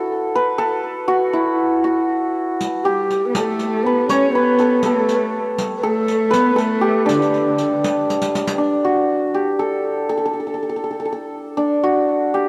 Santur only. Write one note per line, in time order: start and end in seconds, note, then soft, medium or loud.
0.00 1.33 E4 medium
0.00 1.07 F#4 medium
0.00 0.58 A4 medium
0.35 3.09 B4 medium
0.58 3.36 A4 medium
1.08 1.84 F#4 medium
1.33 4.81 E4 medium
1.84 2.91 F#4 medium
2.85 5.99 G4 medium
3.37 4.59 A4 medium
3.86 4.35 B4 medium
4.10 6.65 C#5 loud
4.35 6.30 B4 medium
4.60 4.85 A4 medium
4.86 5.83 A4 medium
5.83 6.56 A4 medium
6.31 9.04 B4 medium
6.56 9.49 A4 medium
6.81 8.91 G4 medium
7.06 8.58 D4 medium
8.58 11.57 D4 medium
8.85 9.40 F#4 medium
9.34 11.90 G4 medium
9.59 10.09 A4 medium
10.09 10.17 A4 medium
10.18 10.25 A4 medium
10.26 10.33 A4 medium
10.33 10.39 A4 soft
10.40 10.46 A4 soft
10.47 10.54 A4 soft
10.54 10.62 A4 soft
10.63 10.69 A4 soft
10.69 10.76 A4 soft
10.76 10.83 A4 soft
10.84 10.90 A4 soft
10.91 10.99 A4 soft
11.00 11.05 A4 soft
11.05 11.12 A4 soft
11.12 12.49 A4 medium
11.57 12.49 D4 medium
11.84 12.40 F#4 medium
12.34 12.49 G4 medium